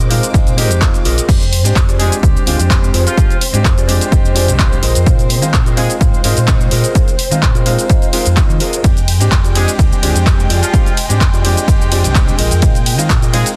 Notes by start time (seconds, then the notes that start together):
Already playing: A#2 C4 D6
0.00 F4 G#4 A#4 D#5, shaker
0.10 G#3 C4 D#4 F4, open hi-hat
0.23 closed hi-hat, shaker
0.33 A#1 G#3 C4 D#4 F4, kick, closed hi-hat, shaker
0.47 A#2, closed hi-hat, shaker
0.57 G#3 C4 D#4 F4 G4 G#4 A#4 D#5, open hi-hat
0.70 F2, closed hi-hat, shaker
0.81 F4, kick, clap, closed hi-hat, shaker
0.94 muted clean electric guitar stroke, closed hi-hat, shaker
1.05 A#1 F4 G#4 A#4 D#5, open hi-hat
1.18 closed hi-hat, shaker
1.28 F2 G#3 C4 D4 G4 C5, kick, closed hi-hat, crash, shaker
1.42 closed hi-hat, shaker
1.53 open hi-hat
1.64 G#2 G#3 C4 D4 G4, closed hi-hat, shaker
1.76 F2, kick, clap, closed hi-hat, shaker
1.88 F4 G4 G#4 D5, closed hi-hat, shaker
1.99 G#3 C4 D4 G4 G#4, open hi-hat
2.12 closed hi-hat, shaker
2.23 D2 G#3 C4 D4 G4, kick, closed hi-hat, shaker
2.37 shaker
2.46 D2 G#3 C4 D4 F4 G4 G#4 F5, open hi-hat
2.59 F2, closed hi-hat, shaker
2.70 G#3, kick, clap, closed hi-hat, shaker
2.83 muted clean electric guitar stroke, shaker
2.93 F2 F4 G4 G#4 C5, open hi-hat
3.06 F3 F4, closed hi-hat, shaker
3.17 G#3 C4 D4 G4, kick, closed hi-hat, shaker
3.30 closed hi-hat, shaker
3.41 open hi-hat
3.53 G#2 G#3 C4 D4 G4, closed hi-hat, shaker
3.65 F2, kick, clap, closed hi-hat, shaker
3.77 F4 G4 G#4 D5, closed hi-hat, shaker
3.88 G#3 C4 D4 G4, open hi-hat
4.01 closed hi-hat, shaker
4.11 F1 G#3 C4 D4 G4, kick, closed hi-hat, shaker
4.24 F2, shaker
4.35 G#3 C4 D4 F4 G4 G#4 D5, open hi-hat
4.48 C2, closed hi-hat, shaker
4.58 G#3 D4 G4 F5, muted clean electric guitar stroke, kick, clap, closed hi-hat, shaker
4.72 F1, muted clean electric guitar stroke, shaker
4.82 A#1 F4 G#4 A#4 D#5, open hi-hat
4.95 F2, closed hi-hat, shaker
5.06 A#2 G#3 C4 D#4 F4, kick, closed hi-hat, shaker
5.19 closed hi-hat, shaker
5.30 open hi-hat
5.42 D#3 G#3 C4 D#4 F4, closed hi-hat, shaker
5.54 A#2, kick, clap, closed hi-hat, shaker
5.66 F4 G#4 A#4 D#5, closed hi-hat, shaker
5.76 G#3 C4 D#4 F4 G#4, open hi-hat
5.90 closed hi-hat, shaker
6.00 G#2 G#3 C4 D#4 F4, kick, closed hi-hat, shaker
6.14 shaker
6.24 G#2 G#3 C4 D#4 F4 G#4 A#4 D#5, open hi-hat
6.37 A#2, closed hi-hat, shaker
6.48 C4 D#4 F4, kick, clap, closed hi-hat, shaker
6.61 muted clean electric guitar stroke, shaker
6.71 A#2 F4 G#4 A#4 D#5, open hi-hat
6.84 closed hi-hat, shaker
6.95 G#3 C4 D#4 F4, kick, closed hi-hat, shaker
7.08 closed hi-hat, shaker
7.19 open hi-hat
7.31 D#3 G#3 C4 D#4 F4, closed hi-hat, shaker
7.43 A#2, kick, clap, closed hi-hat, shaker
7.55 F4 G#4 A#4 D#5, closed hi-hat, shaker
7.66 G#3 C4 D#4 F4, open hi-hat
7.79 closed hi-hat, shaker
7.89 G#3 C4 D#4 F4, kick, closed hi-hat, shaker
8.02 closed hi-hat, shaker
8.13 G#3 C4 D#4 F4 G#4 A#4 F5, open hi-hat
8.26 F2, closed hi-hat, shaker
8.37 C4 D#4 F4 D#5, muted clean electric guitar stroke, kick, clap, closed hi-hat, shaker
8.49 D#3, muted clean electric guitar stroke, shaker
8.60 F4 G#4 A#4 D#5 F5, open hi-hat
8.73 closed hi-hat, shaker
8.83 F2 G#3 C4 D4 G4 G5, kick, closed hi-hat, ride, shaker
8.97 closed hi-hat, shaker
9.08 open hi-hat, ride
9.20 G#2 G#3 C4 D4 G4, closed hi-hat, shaker
9.32 F2, kick, clap, closed hi-hat, ride, shaker
9.44 F4 G4 G#4 D5, closed hi-hat, shaker
9.55 G#3 C4 D4 G4 G#4, open hi-hat, ride
9.68 closed hi-hat, shaker
9.78 D2 G#3 C4 D4 G4, kick, closed hi-hat, ride, shaker
9.92 shaker
10.02 D2 G#3 C4 D4 F4 G4 G#4 D5, open hi-hat, ride
10.15 F2, closed hi-hat, shaker
10.26 G#3 C4 D4 G4, kick, clap, closed hi-hat, ride, shaker
10.39 muted clean electric guitar stroke, shaker
10.50 F2 F4 G4 G#4 D5, open hi-hat, ride
10.62 F3 F4, closed hi-hat, shaker
10.73 G#3 C4 D4 G4, kick, closed hi-hat, ride, shaker
10.86 closed hi-hat, shaker
10.97 open hi-hat, ride
11.09 G#2 G#3 C4 D4 G4, closed hi-hat, shaker
11.21 F2, kick, clap, closed hi-hat, ride, shaker
11.33 F4 G4 G#4 D5, closed hi-hat, shaker
11.44 G#3 C4 D4 G4, open hi-hat, ride
11.57 closed hi-hat, shaker
11.68 F1 G#3 C4 D4 G4, kick, closed hi-hat, ride, shaker
11.80 F2, shaker
11.91 G#3 C4 D4 F4 G4 G#4 D5, open hi-hat, ride
12.04 C2, closed hi-hat, shaker
12.15 G#3 C4 D4, kick, clap, closed hi-hat, ride, shaker
12.28 F1, muted clean electric guitar stroke, shaker
12.39 A#1 F4 G#4 A#4 D#5, open hi-hat, ride
12.51 F2, closed hi-hat, shaker
12.62 A#2 G#3 C4 D#4 F4, kick, closed hi-hat, ride, shaker
12.75 closed hi-hat, shaker
12.86 open hi-hat, ride
12.98 D#3 G#3 C4 D#4 F4, closed hi-hat, shaker
13.10 A#2, kick, clap, closed hi-hat, ride, shaker
13.22 F4 G#4 A#4 D#5, closed hi-hat, shaker
13.33 G#3 C4 D#4 F4 G#4, open hi-hat, ride
13.46 closed hi-hat, shaker